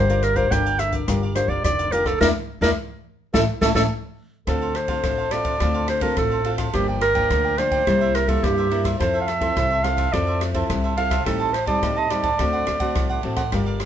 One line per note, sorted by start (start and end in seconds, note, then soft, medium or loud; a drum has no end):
0.00 0.43 G1 loud
0.00 0.48 G3 soft
0.00 0.25 C5 medium
0.09 0.33 D4 medium
0.09 0.33 F4 medium
0.09 0.33 A#4 medium
0.09 0.36 A#4 soft
0.09 0.35 D5 medium
0.09 0.34 F5 medium
0.09 closed hi-hat soft
0.23 0.38 A#4 medium
0.23 cross-stick medium
0.23 closed hi-hat soft
0.36 0.46 D4 medium
0.36 0.46 F4 medium
0.36 0.46 A#4 medium
0.36 0.50 A#4 medium
0.36 0.53 C5 medium
0.36 0.50 D5 medium
0.36 0.49 F5 medium
0.36 kick medium
0.36 closed hi-hat soft
0.51 0.99 G1 medium
0.51 1.05 D3 soft
0.51 1.03 D4 soft
0.51 1.03 F4 soft
0.51 0.64 G4 soft
0.51 1.04 A#4 medium
0.51 0.65 A#4 soft
0.51 0.65 D5 soft
0.51 0.65 F5 soft
0.51 0.81 G5 medium
0.51 kick medium
0.51 cross-stick medium
0.51 closed hi-hat medium
0.66 0.93 A#4 soft
0.66 0.93 D5 medium
0.66 0.92 F5 medium
0.66 closed hi-hat soft
0.79 0.94 E5 medium
0.79 cross-stick medium
0.79 closed hi-hat soft
0.92 1.07 A#4 soft
0.92 1.07 D5 soft
0.92 1.06 F5 medium
0.92 kick medium
0.92 closed hi-hat soft
1.08 1.44 G1 medium
1.08 1.62 G3 medium
1.08 1.24 D4 medium
1.08 1.25 F4 medium
1.08 1.21 G4 soft
1.08 1.21 A#4 soft
1.08 1.25 A#4 medium
1.08 1.21 D5 soft
1.08 1.22 F5 soft
1.08 kick medium
1.08 cross-stick medium
1.08 closed hi-hat medium
1.23 1.35 A#4 medium
1.23 1.36 D5 medium
1.23 1.35 F5 medium
1.35 1.88 D4 soft
1.35 1.88 F4 soft
1.35 1.88 A#4 soft
1.35 1.50 C5 medium
1.35 muted cavaquinho stroke soft
1.35 cross-stick medium
1.35 closed hi-hat soft
1.48 1.61 G1 medium
1.48 1.78 A#4 soft
1.48 1.64 D5 medium
1.48 1.78 D5 soft
1.48 1.77 F5 medium
1.48 kick medium
1.64 2.13 F1 medium
1.64 2.18 D3 medium
1.64 1.93 D5 loud
1.64 kick medium
1.64 cross-stick medium
1.64 closed hi-hat medium
1.79 1.92 A#4 medium
1.79 1.92 D5 medium
1.79 1.92 F5 medium
1.79 closed hi-hat soft
1.92 2.11 D4 soft
1.92 2.11 F4 medium
1.92 2.06 G4 soft
1.92 2.08 A#4 medium
1.92 2.11 A#4 medium
1.92 2.06 A#4 soft
1.92 2.05 D5 soft
1.92 2.04 F5 soft
1.92 closed hi-hat soft
2.06 2.20 A4 medium
2.06 2.20 A#4 soft
2.06 2.20 D5 medium
2.06 2.19 F5 medium
2.06 kick medium
2.06 cross-stick medium
2.21 2.32 E2 medium
2.21 2.30 A#3 medium
2.21 2.30 D4 medium
2.21 2.30 E4 medium
2.21 2.30 A#4 medium
2.21 2.28 A#4 medium
2.21 2.30 D5 medium
2.21 2.30 E5 medium
2.21 kick medium
2.21 snare medium
2.61 2.73 E2 medium
2.61 2.72 A#3 medium
2.61 2.71 D4 medium
2.61 2.71 E4 medium
2.61 2.69 A#4 medium
2.61 2.72 A#4 medium
2.61 2.72 D5 medium
2.61 2.72 E5 medium
2.61 kick medium
2.61 snare medium
3.34 3.45 A1 medium
3.34 3.43 A3 medium
3.34 3.43 C#4 medium
3.34 3.43 E4 medium
3.34 3.41 A4 medium
3.34 3.43 A4 medium
3.34 3.43 C#5 medium
3.34 3.43 E5 medium
3.34 kick medium
3.34 snare medium
3.61 3.72 A1 medium
3.61 3.71 A3 medium
3.61 3.71 C#4 medium
3.61 3.71 E4 medium
3.61 3.68 A4 medium
3.61 3.71 A4 medium
3.61 3.71 C#5 medium
3.61 3.71 E5 medium
3.61 kick medium
3.61 snare medium
3.74 3.86 A1 medium
3.74 3.85 A3 medium
3.74 3.85 C#4 medium
3.74 3.85 E4 medium
3.74 3.82 A4 medium
3.74 3.85 A4 medium
3.74 3.85 C#5 medium
3.74 3.85 E5 medium
3.74 kick medium
3.74 snare medium
4.47 4.95 D2 medium
4.47 5.01 D3 soft
4.47 4.74 C4 soft
4.47 4.60 D4 soft
4.47 4.74 F4 soft
4.47 4.60 A4 soft
4.47 4.77 A4 medium
4.47 4.74 A4 medium
4.47 4.61 C5 soft
4.47 4.60 F5 soft
4.47 kick medium
4.47 cross-stick medium
4.47 ride soft
4.62 4.89 A4 soft
4.62 4.88 C5 medium
4.62 4.87 F5 medium
4.75 5.33 C5 medium
4.75 cross-stick soft
4.75 ride soft
4.88 5.27 C4 medium
4.88 5.28 F4 soft
4.88 5.03 A4 soft
4.88 5.28 A4 medium
4.88 5.03 C5 medium
4.88 5.02 F5 medium
4.88 kick medium
4.88 ride soft
5.03 5.52 A1 medium
5.03 5.58 A2 soft
5.03 5.17 D4 soft
5.03 5.17 A4 soft
5.03 5.17 C5 soft
5.03 5.17 F5 soft
5.03 kick medium
5.03 cross-stick medium
5.03 ride soft
5.18 5.45 A4 soft
5.18 5.45 C5 soft
5.18 5.44 F5 medium
5.31 5.56 C4 soft
5.31 5.56 F4 soft
5.31 5.57 A4 medium
5.31 5.88 D5 medium
5.31 cross-stick medium
5.31 ride soft
5.45 5.59 A4 soft
5.45 5.59 C5 soft
5.45 5.59 F5 medium
5.45 kick medium
5.45 ride soft
5.60 6.09 D2 medium
5.60 6.15 D3 soft
5.60 5.99 C4 soft
5.60 5.73 D4 soft
5.60 5.99 F4 medium
5.60 5.73 A4 soft
5.60 5.99 A4 medium
5.60 5.74 C5 soft
5.60 5.73 F5 soft
5.60 kick medium
5.60 cross-stick medium
5.60 ride soft
5.74 5.87 A4 soft
5.74 5.87 C5 medium
5.74 5.88 F5 medium
5.88 6.04 C5 medium
5.88 muted cavaquinho stroke soft
5.88 cross-stick medium
5.88 ride soft
6.01 6.40 C4 medium
6.01 6.41 F4 medium
6.01 6.41 A4 medium
6.01 6.30 A4 soft
6.01 6.17 A#4 medium
6.01 6.30 C5 medium
6.01 6.29 F5 medium
6.01 kick medium
6.01 ride soft
6.17 6.65 A1 medium
6.17 6.71 A2 soft
6.17 6.57 A4 medium
6.17 kick medium
6.17 cross-stick medium
6.17 ride soft
6.31 6.44 A4 soft
6.31 6.44 C5 medium
6.31 6.44 F5 medium
6.44 6.69 C4 soft
6.44 6.58 D4 soft
6.44 6.69 F4 soft
6.44 6.58 A4 soft
6.44 6.70 A4 medium
6.44 6.58 C5 medium
6.44 6.57 F5 soft
6.44 ride soft
6.58 6.73 A4 medium
6.58 6.72 C5 medium
6.58 6.72 F5 medium
6.58 kick medium
6.58 cross-stick medium
6.58 ride soft
6.73 7.22 G1 medium
6.73 7.28 G2 soft
6.73 7.01 F3 soft
6.73 7.01 A#3 soft
6.73 7.01 D4 medium
6.73 6.87 F4 soft
6.73 6.87 G4 medium
6.73 6.87 A#4 soft
6.73 6.87 D5 soft
6.73 6.87 G5 medium
6.73 kick medium
6.73 cross-stick medium
6.73 ride soft
6.88 7.15 A#4 medium
6.88 7.15 D5 soft
6.88 7.14 G5 medium
7.01 7.59 A#4 medium
7.01 cross-stick medium
7.01 ride soft
7.15 7.54 F3 soft
7.15 7.54 A#3 medium
7.15 7.54 D4 medium
7.15 7.29 A#4 soft
7.15 7.29 D5 soft
7.15 7.29 G5 medium
7.15 kick medium
7.15 ride soft
7.30 7.79 D2 medium
7.30 7.84 D3 medium
7.30 7.43 F4 soft
7.30 7.44 A#4 soft
7.30 7.44 D5 soft
7.30 7.43 G5 soft
7.30 kick medium
7.30 cross-stick medium
7.30 ride soft
7.45 7.72 A#4 soft
7.45 7.71 D5 soft
7.45 7.70 G5 medium
7.58 7.82 F3 medium
7.58 7.82 A#3 medium
7.58 7.83 D4 medium
7.58 8.16 C5 medium
7.58 cross-stick medium
7.58 ride soft
7.71 7.86 A#4 medium
7.71 7.85 D5 medium
7.71 7.85 G5 medium
7.71 kick medium
7.71 ride soft
7.86 8.35 C2 medium
7.86 8.41 C3 soft
7.86 8.25 G3 medium
7.86 8.25 A#3 soft
7.86 8.00 E4 soft
7.86 8.25 E4 medium
7.86 8.00 A#4 soft
7.86 8.00 C5 soft
7.86 8.00 E5 soft
7.86 kick medium
7.86 cross-stick medium
7.86 ride soft
8.01 8.14 A#4 soft
8.01 8.14 C5 medium
8.01 8.14 E5 medium
8.15 8.30 A#4 medium
8.15 muted cavaquinho stroke soft
8.15 cross-stick medium
8.15 ride soft
8.28 8.66 G3 medium
8.28 8.67 A#3 medium
8.28 8.67 E4 medium
8.28 8.45 A4 medium
8.28 8.57 A#4 soft
8.28 8.56 C5 medium
8.28 8.56 E5 medium
8.28 kick medium
8.28 ride soft
8.43 8.97 G2 soft
8.43 8.92 G2 medium
8.43 8.86 G4 medium
8.43 kick medium
8.43 cross-stick medium
8.43 ride soft
8.58 8.70 A#4 soft
8.58 8.70 C5 medium
8.58 8.71 E5 medium
8.71 8.95 G3 medium
8.71 8.95 A#3 soft
8.71 8.84 E4 soft
8.71 8.95 E4 medium
8.71 8.85 A#4 soft
8.71 8.84 C5 soft
8.71 8.83 E5 medium
8.71 ride soft
8.84 8.99 A#4 soft
8.84 8.98 C5 medium
8.84 8.98 E5 medium
8.84 kick medium
8.84 cross-stick medium
8.84 ride soft
8.99 9.48 F2 medium
8.99 9.54 F3 soft
8.99 9.26 C4 soft
8.99 9.27 E4 soft
8.99 9.13 F4 soft
8.99 9.13 A4 soft
8.99 9.27 A4 medium
8.99 9.20 C5 medium
8.99 9.13 C5 medium
8.99 9.13 E5 medium
8.99 kick medium
8.99 cross-stick medium
8.99 ride soft
9.14 9.41 A4 soft
9.14 9.40 C5 medium
9.14 9.39 E5 medium
9.21 9.29 F5 medium
9.27 9.85 E5 loud
9.27 cross-stick medium
9.27 ride soft
9.40 9.79 C4 medium
9.40 9.80 E4 medium
9.40 9.80 A4 medium
9.40 9.55 A4 soft
9.40 9.55 C5 medium
9.40 9.54 E5 medium
9.40 kick medium
9.40 ride soft
9.56 10.05 C2 medium
9.56 10.10 C3 soft
9.56 9.69 F4 soft
9.56 9.69 A4 soft
9.56 9.70 C5 soft
9.56 9.69 E5 soft
9.56 kick medium
9.56 cross-stick medium
9.56 ride soft
9.71 9.97 A4 soft
9.71 9.97 C5 soft
9.71 9.96 E5 medium
9.84 10.08 C4 soft
9.84 10.09 E4 soft
9.84 10.09 A4 medium
9.84 10.14 F5 medium
9.84 cross-stick medium
9.84 ride soft
9.97 10.12 A4 soft
9.97 10.12 C5 medium
9.97 10.11 E5 medium
9.97 kick medium
9.97 ride soft
10.13 10.61 F2 medium
10.13 10.67 F3 soft
10.13 10.51 C4 soft
10.13 10.51 E4 soft
10.13 10.26 F4 soft
10.13 10.26 A4 soft
10.13 10.52 A4 medium
10.13 10.27 C5 soft
10.13 10.41 D5 medium
10.13 10.26 E5 soft
10.13 kick medium
10.13 cross-stick medium
10.13 ride soft
10.27 10.40 A4 soft
10.27 10.40 C5 soft
10.27 10.40 E5 medium
10.41 muted cavaquinho stroke soft
10.41 cross-stick medium
10.41 ride soft
10.54 10.93 C4 medium
10.54 10.93 E4 medium
10.54 10.93 A4 medium
10.54 10.83 A4 soft
10.54 10.82 C5 medium
10.54 10.82 E5 medium
10.54 kick medium
10.54 ride soft
10.70 11.18 C2 medium
10.70 11.23 C3 soft
10.70 kick medium
10.70 cross-stick medium
10.70 ride soft
10.84 10.96 A4 medium
10.84 10.97 C5 medium
10.84 10.97 E5 medium
10.97 11.14 C4 soft
10.97 11.14 E4 soft
10.97 11.10 F4 soft
10.97 11.11 A4 soft
10.97 11.15 A4 medium
10.97 11.10 C5 soft
10.97 11.09 E5 soft
10.97 11.24 F5 medium
10.97 ride soft
11.10 11.25 A4 soft
11.10 11.25 C5 medium
11.10 11.24 E5 medium
11.10 kick medium
11.10 cross-stick medium
11.10 ride soft
11.25 11.74 A1 medium
11.25 11.80 A2 soft
11.25 11.53 G3 medium
11.25 11.53 C4 soft
11.25 11.53 D#4 soft
11.25 11.39 G4 soft
11.25 11.55 A4 medium
11.25 11.39 C5 soft
11.25 11.39 D#5 soft
11.25 11.38 A5 medium
11.25 kick medium
11.25 cross-stick medium
11.25 ride soft
11.40 11.67 C5 soft
11.40 11.66 D#5 medium
11.40 11.65 A5 medium
11.53 11.67 C5 medium
11.53 cross-stick medium
11.53 ride soft
11.66 12.06 G3 medium
11.66 12.06 C4 soft
11.66 12.06 D#4 medium
11.66 11.81 C5 soft
11.66 11.99 D5 medium
11.66 11.81 D#5 medium
11.66 11.81 A5 medium
11.66 kick medium
11.66 ride soft
11.82 12.31 D#2 medium
11.82 12.37 A2 soft
11.82 11.96 G4 soft
11.82 11.96 C5 soft
11.82 11.96 D#5 soft
11.82 11.95 A5 soft
11.82 kick medium
11.82 cross-stick medium
11.82 ride soft
11.96 12.24 C5 soft
11.96 12.23 D#5 soft
11.96 12.12 D#5 medium
11.96 12.22 A5 medium
12.10 12.27 G3 medium
12.10 12.28 C4 soft
12.10 12.28 D#4 medium
12.10 13.24 D5 medium
12.10 cross-stick medium
12.10 ride soft
12.23 12.38 C5 soft
12.23 12.38 D#5 soft
12.23 12.37 A5 medium
12.23 kick medium
12.23 ride soft
12.38 12.63 D2 medium
12.38 12.93 D3 soft
12.38 12.78 A3 soft
12.38 12.78 C4 medium
12.38 12.52 D4 soft
12.38 12.78 F#4 medium
12.38 12.52 C5 soft
12.38 12.52 D5 soft
12.38 12.52 F#5 soft
12.38 kick medium
12.38 cross-stick medium
12.38 ride soft
12.53 12.65 C5 soft
12.53 12.65 D5 soft
12.53 12.66 F#5 medium
12.66 12.93 D2 medium
12.66 muted cavaquinho stroke soft
12.66 cross-stick medium
12.66 ride soft
12.80 13.19 A3 medium
12.80 13.19 C4 medium
12.80 13.19 F#4 medium
12.80 13.09 C5 soft
12.80 13.08 D5 medium
12.80 13.08 F#5 medium
12.80 kick medium
12.80 ride soft
12.95 13.21 C2 medium
12.95 13.50 A2 medium
12.95 kick medium
12.95 cross-stick medium
12.95 ride soft
13.10 13.22 C5 soft
13.10 13.22 D5 medium
13.10 13.23 F#5 medium
13.22 13.49 A1 medium
13.22 13.41 A3 soft
13.22 13.41 C4 soft
13.22 13.36 D4 soft
13.22 13.41 F#4 soft
13.22 13.37 C5 soft
13.22 13.36 D5 soft
13.22 13.35 F#5 soft
13.22 ride soft
13.36 13.51 C5 soft
13.36 13.51 D5 medium
13.36 13.50 F#5 medium
13.36 kick medium
13.36 cross-stick medium
13.36 ride soft
13.52 13.85 G1 medium
13.52 13.85 G3 soft
13.52 13.85 D4 soft
13.52 13.85 F4 soft
13.52 13.65 G4 soft
13.52 13.65 A#4 soft
13.52 13.85 A#4 medium
13.52 13.66 D5 soft
13.52 13.65 F5 medium
13.52 kick medium
13.52 cross-stick medium
13.52 ride soft
13.66 13.85 A#4 soft
13.66 13.85 D5 medium
13.66 13.85 F5 medium
13.80 cross-stick medium
13.80 ride soft